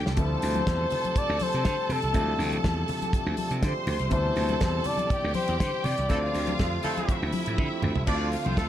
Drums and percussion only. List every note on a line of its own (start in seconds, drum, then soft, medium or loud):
0.06 snare medium
0.17 kick loud
0.17 closed hi-hat medium
0.17 low conga medium
0.42 open hi-hat medium
0.42 muted conga soft
0.54 closed hi-hat soft
0.54 high conga medium
0.67 kick loud
0.67 snare loud
0.67 closed hi-hat medium
0.67 muted conga soft
0.90 open hi-hat medium
0.90 low conga medium
1.04 closed hi-hat soft
1.04 high conga medium
1.16 kick loud
1.16 closed hi-hat medium
1.39 open hi-hat medium
1.39 muted conga soft
1.39 high conga medium
1.53 closed hi-hat medium
1.65 kick loud
1.65 snare loud
1.65 closed hi-hat medium
1.65 muted conga soft
1.90 open hi-hat medium
1.90 muted conga soft
1.90 low conga medium
2.02 closed hi-hat soft
2.14 kick loud
2.14 closed hi-hat medium
2.14 low conga medium
2.40 open hi-hat medium
2.52 closed hi-hat soft
2.52 high conga medium
2.64 kick loud
2.64 snare loud
2.64 closed hi-hat medium
2.88 open hi-hat medium
2.88 muted conga soft
2.88 low conga medium
3.02 closed hi-hat medium
3.02 high conga medium
3.13 kick loud
3.13 closed hi-hat medium
3.13 muted conga soft
3.37 open hi-hat medium
3.37 high conga medium
3.51 closed hi-hat medium
3.62 kick loud
3.62 snare loud
3.62 closed hi-hat medium
3.87 open hi-hat medium
3.87 muted conga soft
3.87 low conga medium
3.99 closed hi-hat medium
4.11 kick loud
4.11 closed hi-hat medium
4.11 muted conga soft
4.11 low conga medium
4.36 open hi-hat medium
4.36 muted conga soft
4.49 closed hi-hat soft
4.49 high conga medium
4.61 kick loud
4.61 snare loud
4.61 closed hi-hat medium
4.61 muted conga soft
4.84 open hi-hat medium
4.84 muted conga soft
4.84 low conga medium
4.97 closed hi-hat medium
4.97 high conga medium
5.10 kick loud
5.10 closed hi-hat medium
5.34 open hi-hat medium
5.34 muted conga soft
5.34 high conga medium
5.48 closed hi-hat medium
5.60 kick loud
5.60 snare loud
5.60 closed hi-hat medium
5.84 open hi-hat medium
5.84 muted conga soft
5.84 low conga medium
5.98 closed hi-hat medium
6.09 kick loud
6.09 closed hi-hat medium
6.09 low conga medium
6.35 open hi-hat medium
6.35 muted conga soft
6.47 closed hi-hat soft
6.47 high conga medium
6.59 kick loud
6.59 snare loud
6.59 closed hi-hat medium
6.59 muted conga soft
6.83 open hi-hat medium
6.83 muted conga soft
6.83 low conga medium
6.97 closed hi-hat soft
6.97 high conga medium
7.09 kick loud
7.09 closed hi-hat medium
7.33 open hi-hat medium
7.33 muted conga soft
7.33 high conga medium
7.46 closed hi-hat medium
7.58 kick loud
7.58 high tom medium
7.58 muted conga soft
7.82 mid tom medium
7.82 muted conga soft
7.82 low conga medium
7.96 floor tom loud
8.07 kick loud
8.07 crash medium
8.07 low conga medium
8.32 open hi-hat medium
8.32 muted conga soft
8.45 closed hi-hat soft
8.45 high conga medium
8.57 kick loud
8.57 snare loud
8.57 closed hi-hat medium